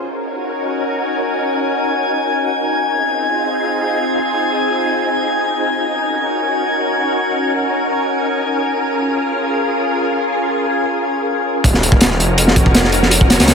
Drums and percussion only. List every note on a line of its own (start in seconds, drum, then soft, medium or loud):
11.64 kick loud
11.64 closed hi-hat medium
11.74 snare medium
11.83 closed hi-hat medium
11.92 kick loud
12.01 snare loud
12.01 closed hi-hat medium
12.11 snare soft
12.20 closed hi-hat medium
12.38 closed hi-hat medium
12.48 snare medium
12.56 kick loud
12.56 closed hi-hat medium
12.66 kick loud
12.75 snare loud
12.75 closed hi-hat medium
12.84 snare medium
12.92 closed hi-hat medium
13.03 snare soft
13.11 closed hi-hat medium
13.21 kick medium
13.30 snare loud
13.30 closed hi-hat medium
13.40 snare loud
13.40 closed hi-hat medium
13.48 snare loud
13.48 closed hi-hat medium